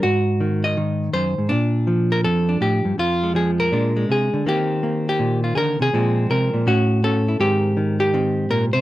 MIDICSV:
0, 0, Header, 1, 2, 480
1, 0, Start_track
1, 0, Tempo, 368098
1, 46, Time_signature, 4, 2, 24, 8
1, 11488, End_track
2, 0, Start_track
2, 0, Title_t, "Hollow-body jazz guitar"
2, 0, Program_c, 0, 26
2, 39, Note_on_c, 0, 66, 86
2, 47, Note_on_c, 0, 44, 53
2, 527, Note_on_c, 0, 51, 52
2, 836, Note_on_c, 0, 75, 89
2, 988, Note_off_c, 0, 51, 0
2, 1003, Note_on_c, 0, 51, 55
2, 1004, Note_off_c, 0, 66, 0
2, 1471, Note_off_c, 0, 44, 0
2, 1475, Note_off_c, 0, 75, 0
2, 1476, Note_on_c, 0, 42, 53
2, 1480, Note_on_c, 0, 72, 86
2, 1798, Note_off_c, 0, 42, 0
2, 1803, Note_on_c, 0, 44, 47
2, 1943, Note_on_c, 0, 62, 81
2, 1948, Note_off_c, 0, 51, 0
2, 1961, Note_on_c, 0, 46, 53
2, 1964, Note_off_c, 0, 72, 0
2, 1969, Note_off_c, 0, 44, 0
2, 2440, Note_on_c, 0, 53, 54
2, 2763, Note_on_c, 0, 70, 89
2, 2922, Note_off_c, 0, 70, 0
2, 2927, Note_off_c, 0, 46, 0
2, 2927, Note_on_c, 0, 41, 55
2, 2927, Note_on_c, 0, 69, 90
2, 3228, Note_off_c, 0, 62, 0
2, 3243, Note_on_c, 0, 62, 44
2, 3396, Note_off_c, 0, 41, 0
2, 3401, Note_on_c, 0, 45, 48
2, 3408, Note_off_c, 0, 69, 0
2, 3413, Note_on_c, 0, 67, 75
2, 3712, Note_off_c, 0, 45, 0
2, 3718, Note_on_c, 0, 43, 56
2, 3871, Note_off_c, 0, 62, 0
2, 3879, Note_off_c, 0, 43, 0
2, 3884, Note_on_c, 0, 41, 56
2, 3893, Note_off_c, 0, 67, 0
2, 3904, Note_on_c, 0, 65, 84
2, 4215, Note_on_c, 0, 56, 35
2, 4361, Note_off_c, 0, 53, 0
2, 4367, Note_on_c, 0, 53, 55
2, 4377, Note_off_c, 0, 65, 0
2, 4383, Note_on_c, 0, 68, 73
2, 4569, Note_off_c, 0, 68, 0
2, 4692, Note_on_c, 0, 70, 77
2, 4830, Note_off_c, 0, 53, 0
2, 4841, Note_off_c, 0, 56, 0
2, 4849, Note_off_c, 0, 41, 0
2, 4849, Note_on_c, 0, 46, 59
2, 4856, Note_on_c, 0, 56, 39
2, 4866, Note_on_c, 0, 62, 45
2, 5155, Note_off_c, 0, 56, 0
2, 5171, Note_on_c, 0, 56, 42
2, 5331, Note_off_c, 0, 46, 0
2, 5336, Note_off_c, 0, 70, 0
2, 5336, Note_on_c, 0, 48, 53
2, 5366, Note_on_c, 0, 68, 76
2, 5648, Note_off_c, 0, 48, 0
2, 5653, Note_on_c, 0, 50, 53
2, 5800, Note_off_c, 0, 62, 0
2, 5815, Note_off_c, 0, 56, 0
2, 5816, Note_off_c, 0, 50, 0
2, 5820, Note_on_c, 0, 51, 60
2, 5825, Note_on_c, 0, 58, 40
2, 5830, Note_off_c, 0, 68, 0
2, 5835, Note_on_c, 0, 60, 35
2, 5849, Note_on_c, 0, 67, 80
2, 6284, Note_off_c, 0, 58, 0
2, 6299, Note_on_c, 0, 58, 52
2, 6621, Note_off_c, 0, 67, 0
2, 6637, Note_on_c, 0, 67, 86
2, 6770, Note_on_c, 0, 46, 61
2, 7086, Note_off_c, 0, 67, 0
2, 7091, Note_on_c, 0, 65, 45
2, 7214, Note_off_c, 0, 65, 0
2, 7241, Note_on_c, 0, 68, 60
2, 7248, Note_off_c, 0, 46, 0
2, 7253, Note_on_c, 0, 50, 55
2, 7268, Note_off_c, 0, 68, 0
2, 7270, Note_on_c, 0, 70, 91
2, 7562, Note_off_c, 0, 50, 0
2, 7567, Note_on_c, 0, 48, 55
2, 7576, Note_off_c, 0, 70, 0
2, 7590, Note_on_c, 0, 68, 81
2, 7716, Note_off_c, 0, 58, 0
2, 7733, Note_off_c, 0, 48, 0
2, 7737, Note_off_c, 0, 51, 0
2, 7739, Note_on_c, 0, 46, 62
2, 7744, Note_off_c, 0, 60, 0
2, 7747, Note_on_c, 0, 53, 37
2, 7756, Note_on_c, 0, 56, 41
2, 7762, Note_on_c, 0, 60, 36
2, 8210, Note_off_c, 0, 46, 0
2, 8215, Note_on_c, 0, 48, 60
2, 8219, Note_off_c, 0, 68, 0
2, 8224, Note_on_c, 0, 70, 86
2, 8519, Note_off_c, 0, 48, 0
2, 8524, Note_on_c, 0, 46, 58
2, 8679, Note_off_c, 0, 53, 0
2, 8691, Note_off_c, 0, 46, 0
2, 8691, Note_on_c, 0, 45, 70
2, 8692, Note_off_c, 0, 56, 0
2, 8697, Note_on_c, 0, 61, 45
2, 8698, Note_off_c, 0, 70, 0
2, 8700, Note_off_c, 0, 60, 0
2, 8705, Note_on_c, 0, 66, 84
2, 9162, Note_off_c, 0, 61, 0
2, 9177, Note_on_c, 0, 61, 57
2, 9181, Note_on_c, 0, 69, 83
2, 9493, Note_off_c, 0, 66, 0
2, 9498, Note_on_c, 0, 64, 41
2, 9631, Note_off_c, 0, 45, 0
2, 9635, Note_off_c, 0, 61, 0
2, 9637, Note_off_c, 0, 64, 0
2, 9644, Note_on_c, 0, 44, 65
2, 9655, Note_off_c, 0, 69, 0
2, 9655, Note_on_c, 0, 51, 36
2, 9656, Note_on_c, 0, 67, 89
2, 9660, Note_on_c, 0, 60, 43
2, 10115, Note_off_c, 0, 51, 0
2, 10130, Note_on_c, 0, 51, 58
2, 10416, Note_off_c, 0, 67, 0
2, 10432, Note_on_c, 0, 67, 85
2, 10597, Note_off_c, 0, 51, 0
2, 10611, Note_on_c, 0, 51, 58
2, 10614, Note_off_c, 0, 60, 0
2, 10619, Note_on_c, 0, 60, 48
2, 11083, Note_off_c, 0, 51, 0
2, 11089, Note_on_c, 0, 46, 52
2, 11092, Note_on_c, 0, 70, 91
2, 11277, Note_off_c, 0, 70, 0
2, 11386, Note_on_c, 0, 72, 88
2, 11390, Note_off_c, 0, 46, 0
2, 11396, Note_on_c, 0, 48, 61
2, 11397, Note_off_c, 0, 67, 0
2, 11488, Note_off_c, 0, 44, 0
2, 11488, Note_off_c, 0, 48, 0
2, 11488, Note_off_c, 0, 60, 0
2, 11488, Note_off_c, 0, 72, 0
2, 11488, End_track
0, 0, End_of_file